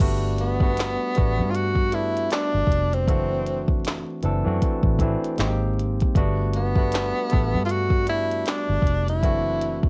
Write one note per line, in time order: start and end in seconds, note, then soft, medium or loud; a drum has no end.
0.00 0.96 G1 medium
0.00 0.48 G3 loud
0.00 0.48 A3 medium
0.00 0.48 B3 medium
0.00 0.49 D4 medium
0.00 0.49 F#4 loud
0.00 kick medium
0.00 closed hi-hat medium
0.00 crash medium
0.38 1.52 B3 medium
0.38 closed hi-hat medium
0.60 1.06 G3 medium
0.60 1.06 A3 medium
0.60 1.07 B3 medium
0.60 1.07 D4 medium
0.60 1.07 F#4 medium
0.60 kick medium
0.77 snare medium
0.77 clap medium
0.77 closed hi-hat medium
1.15 1.41 A1 medium
1.15 1.80 G3 medium
1.15 1.81 A3 medium
1.15 1.81 B3 medium
1.15 1.81 D4 medium
1.15 1.82 F#4 medium
1.15 kick medium
1.15 closed hi-hat medium
1.39 2.27 G2 medium
1.50 1.57 F4 medium
1.55 1.96 F#4 medium
1.55 closed hi-hat medium
1.75 kick medium
1.92 2.89 G3 medium
1.92 2.89 A3 medium
1.92 2.90 B3 medium
1.92 2.90 D4 medium
1.92 2.32 E4 medium
1.92 2.90 F#4 medium
1.92 closed hi-hat medium
2.17 closed hi-hat soft
2.31 2.96 D4 medium
2.31 snare medium
2.31 clap medium
2.31 closed hi-hat medium
2.54 2.67 G1 medium
2.67 3.08 F1 medium
2.67 kick medium
2.72 closed hi-hat medium
2.93 3.70 C4 medium
2.93 closed hi-hat soft
3.07 4.04 F#1 medium
3.07 4.04 E3 medium
3.07 4.05 A3 medium
3.07 4.05 C4 medium
3.07 4.05 D4 medium
3.07 4.06 F#4 medium
3.07 kick medium
3.07 closed hi-hat medium
3.46 closed hi-hat medium
3.68 kick medium
3.85 snare medium
3.85 clap medium
3.85 closed hi-hat medium
4.23 4.42 F#1 medium
4.23 4.41 E3 medium
4.23 4.42 A3 medium
4.23 4.42 C4 medium
4.23 4.42 D4 medium
4.23 4.43 A4 medium
4.23 closed hi-hat medium
4.45 4.59 F#2 medium
4.45 4.91 E3 medium
4.45 4.91 A3 medium
4.45 4.91 C4 medium
4.45 4.92 D4 medium
4.45 4.92 F#4 medium
4.62 muted fingered electric bass stroke soft
4.62 kick medium
4.62 closed hi-hat medium
4.83 5.15 A1 medium
4.83 kick medium
4.99 5.38 E3 medium
4.99 5.39 A3 medium
4.99 5.38 C4 medium
4.99 5.39 D4 medium
4.99 5.40 E4 medium
4.99 kick medium
4.99 closed hi-hat medium
5.24 closed hi-hat soft
5.38 6.01 G#1 medium
5.38 6.03 G#3 medium
5.38 6.04 A#3 medium
5.38 6.04 C4 medium
5.38 6.04 D#4 medium
5.38 5.47 F#4 medium
5.38 snare medium
5.38 clap medium
5.38 closed hi-hat medium
5.47 6.08 G4 medium
5.79 closed hi-hat soft
6.01 kick medium
6.01 closed hi-hat soft
6.15 7.11 G1 medium
6.15 6.63 G3 medium
6.15 6.64 A3 medium
6.15 6.64 B3 medium
6.15 6.65 D4 medium
6.15 6.65 F#4 loud
6.15 kick medium
6.15 closed hi-hat medium
6.54 7.61 B3 medium
6.54 closed hi-hat medium
6.76 7.21 G3 medium
6.76 7.22 A3 medium
6.76 7.22 B3 medium
6.76 7.23 D4 medium
6.76 7.23 F#4 medium
6.76 kick medium
6.92 snare medium
6.92 clap medium
6.92 closed hi-hat medium
7.29 7.95 G3 medium
7.29 7.95 A3 medium
7.29 7.96 B3 medium
7.29 7.96 D4 medium
7.29 7.97 A4 medium
7.29 kick medium
7.29 closed hi-hat medium
7.34 7.56 A1 medium
7.54 8.42 G2 medium
7.65 7.72 F4 medium
7.69 8.09 F#4 medium
7.69 closed hi-hat medium
7.90 kick medium
8.07 9.04 G3 medium
8.07 9.04 A3 medium
8.07 9.05 B3 medium
8.07 9.05 D4 medium
8.07 8.50 E4 medium
8.07 9.05 F#4 medium
8.07 closed hi-hat medium
8.31 closed hi-hat soft
8.46 9.08 D4 medium
8.46 snare medium
8.46 clap medium
8.46 closed hi-hat medium
8.69 8.82 G1 medium
8.82 9.23 F1 medium
8.82 kick medium
8.87 closed hi-hat medium
9.08 9.81 E4 medium
9.08 closed hi-hat soft
9.22 9.89 F#1 medium
9.22 9.89 E3 medium
9.22 9.89 A3 medium
9.22 9.89 C4 medium
9.22 9.89 D4 medium
9.22 9.89 F#4 medium
9.22 kick medium
9.22 closed hi-hat medium
9.62 closed hi-hat medium
9.83 kick medium